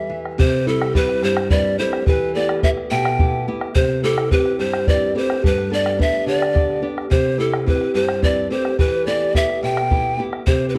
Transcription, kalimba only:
0.00 0.18 B4 medium
0.39 0.65 G4 medium
0.67 0.95 E4 medium
0.96 1.22 G4 medium
1.24 1.52 G4 medium
1.52 1.80 B4 medium
1.80 2.08 A4 medium
2.08 2.36 G4 medium
2.36 2.62 A4 medium
2.64 2.76 B4 medium
2.92 3.51 E5 medium
3.76 4.02 G4 medium
4.05 4.31 E4 medium
4.32 4.59 G4 medium
4.60 4.86 G4 medium
4.88 5.16 B4 medium
5.16 5.42 A4 medium
5.43 5.69 G4 medium
5.70 5.97 A4 medium
6.00 6.26 B4 medium
6.28 6.87 G4 medium
7.12 7.38 G4 medium
7.41 7.68 E4 medium
7.68 7.94 G4 medium
7.97 8.24 G4 medium
8.24 8.50 B4 medium
8.52 8.78 A4 medium
8.79 9.07 G4 medium
9.08 9.36 A4 medium
9.36 9.62 B4 medium
9.64 10.23 E5 medium
10.48 10.67 G4 medium
10.69 10.75 G4 soft

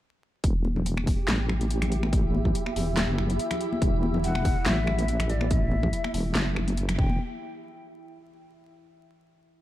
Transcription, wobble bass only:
0.44 1.17 E1 loud
1.28 2.54 A1 medium
2.76 3.07 E1 medium
3.08 3.38 F#1 medium
3.82 4.55 E1 loud
4.66 5.92 A1 medium
6.14 6.35 E1 medium
6.35 6.98 F#1 medium
6.99 7.18 E1 loud

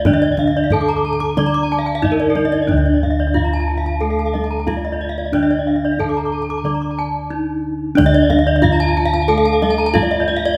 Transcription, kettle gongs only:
0.00 1.36 D2 loud
0.06 2.00 D4 medium
1.38 3.32 D3 medium
2.03 2.11 D#4 soft
2.68 4.63 D4 medium
2.73 6.63 D2 loud
3.35 3.43 D#4 soft
4.67 4.75 D#4 soft
5.32 7.27 D4 medium
5.98 6.06 D#4 soft
6.64 8.59 D3 medium
7.31 7.39 D#4 soft
7.95 9.91 D4 medium
8.00 10.57 D2 medium
8.62 8.70 D#4 soft
9.94 10.02 D#4 soft

